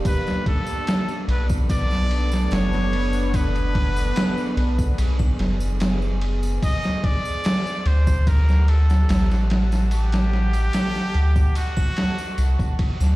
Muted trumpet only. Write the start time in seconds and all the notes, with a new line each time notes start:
0.07 B4
0.47 A4
1.30 B4
1.71 D5
2.53 C#5
3.35 B4
6.64 D#5
7.05 D5
7.87 C5
8.28 A#4
8.69 A4
9.92 G4
11.57 F#4